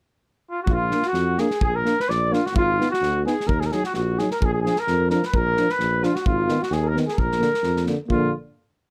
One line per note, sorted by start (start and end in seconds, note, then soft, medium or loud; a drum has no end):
0.50 0.60 F4 medium
0.63 0.92 A#1 medium
0.63 0.75 F#4 medium
0.67 1.06 F4 medium
0.67 kick medium
0.74 1.09 F4 medium
0.91 1.02 A#3 soft
0.91 1.01 D4 medium
0.91 snare soft
1.02 1.41 F#4 medium
1.02 snare soft
1.07 1.41 F#4 medium
1.13 1.39 F2 medium
1.13 snare soft
1.38 1.48 A#3 medium
1.38 1.48 D4 medium
1.38 1.62 G#4 medium
1.38 1.61 G#4 medium
1.38 snare soft
1.51 snare soft
1.61 1.87 A#1 medium
1.61 1.76 G#4 medium
1.61 1.77 G#4 medium
1.61 kick medium
1.75 2.00 A#4 medium
1.75 2.02 A#4 medium
1.85 1.94 A#3 medium
1.85 1.95 D4 medium
1.85 snare soft
1.99 2.13 B4 medium
1.99 2.11 B4 medium
1.99 snare soft
2.09 2.34 A#1 medium
2.09 2.35 D5 medium
2.09 snare soft
2.30 2.39 A#3 medium
2.30 2.41 D4 medium
2.30 2.47 F4 medium
2.30 snare soft
2.45 2.54 F#4 medium
2.45 2.55 F#4 medium
2.45 snare soft
2.53 2.79 G#1 medium
2.53 2.88 F4 medium
2.53 2.89 F4 medium
2.53 kick medium
2.78 2.89 B3 medium
2.78 2.88 D#4 medium
2.78 snare soft
2.91 3.22 F#4 medium
2.91 3.23 F#4 medium
2.91 snare soft
3.01 3.27 D2 medium
3.01 snare soft
3.25 3.34 B3 medium
3.25 3.36 D#4 medium
3.25 3.51 G#4 medium
3.25 3.48 G#4 medium
3.25 snare soft
3.40 snare soft
3.46 3.72 D#2 medium
3.46 3.61 A#4 medium
3.46 3.62 A#4 medium
3.46 kick medium
3.60 3.68 G#4 medium
3.60 3.65 G#4 medium
3.60 3.72 A#4 soft
3.60 snare soft
3.66 3.83 G#4 medium
3.66 3.74 A#4 medium
3.72 3.82 F#3 soft
3.72 3.82 D#4 medium
3.72 3.85 G#4 medium
3.72 snare soft
3.84 3.93 F#4 soft
3.84 3.94 F#4 medium
3.84 snare soft
3.94 4.20 A#1 medium
3.94 4.20 F#4 medium
3.94 snare soft
4.18 4.28 F#3 soft
4.18 4.28 D#4 medium
4.18 4.30 G#4 medium
4.18 4.31 G#4 medium
4.18 snare soft
4.31 4.43 A#4 medium
4.31 4.47 A#4 medium
4.31 snare soft
4.41 4.67 A#1 medium
4.41 4.51 G#4 medium
4.41 kick medium
4.45 4.53 G#4 medium
4.51 4.59 G#4 medium
4.51 4.60 G#4 medium
4.61 4.74 F3 soft
4.61 4.73 D4 medium
4.61 4.79 G#4 medium
4.61 4.81 G#4 medium
4.66 snare soft
4.76 5.10 A#4 medium
4.76 snare soft
4.87 5.13 F2 medium
4.87 snare soft
5.10 5.22 F3 medium
5.10 5.20 D4 medium
5.10 5.25 A#4 medium
5.10 5.27 A#4 medium
5.10 snare soft
5.23 5.36 B4 medium
5.23 5.37 B4 medium
5.23 snare soft
5.34 5.60 A#1 medium
5.34 5.71 A#4 medium
5.34 5.72 A#4 loud
5.34 kick medium
5.57 5.68 F3 soft
5.57 5.67 D4 medium
5.57 snare soft
5.69 6.05 B4 medium
5.69 6.06 B4 medium
5.69 snare soft
5.79 6.05 A#1 medium
5.79 snare soft
6.02 6.12 F3 medium
6.02 6.13 D4 medium
6.02 6.16 F4 soft
6.02 6.17 F4 medium
6.02 snare soft
6.14 6.27 F#4 medium
6.14 6.28 F#4 medium
6.14 snare soft
6.25 6.51 G#1 medium
6.25 6.60 F4 medium
6.25 6.62 F4 medium
6.25 kick medium
6.48 6.58 D#3 medium
6.48 6.58 B3 medium
6.48 snare soft
6.60 6.73 F#4 soft
6.60 6.74 F#4 medium
6.60 snare soft
6.70 6.96 D#2 loud
6.70 6.85 G#4 medium
6.70 6.90 G#4 medium
6.70 snare soft
6.83 6.95 A#4 medium
6.88 6.97 A#4 medium
6.94 7.05 D#3 medium
6.94 7.04 B3 medium
6.94 snare soft
7.06 7.15 G#4 medium
7.06 7.20 G#4 medium
7.06 snare soft
7.14 7.43 A#1 medium
7.14 7.85 A#4 medium
7.18 7.88 A#4 medium
7.18 kick medium
7.32 snare soft
7.39 7.50 D3 soft
7.39 7.49 A#3 medium
7.39 snare soft
7.54 snare soft
7.62 7.88 F2 medium
7.62 snare soft
7.76 snare soft
7.85 7.97 D3 soft
7.85 7.94 A#3 medium
7.85 snare soft
8.07 8.31 A#1 medium
8.07 8.30 A#3 medium
8.07 8.31 F4 medium
8.07 8.32 F4 medium
8.07 kick medium
8.12 8.32 D3 medium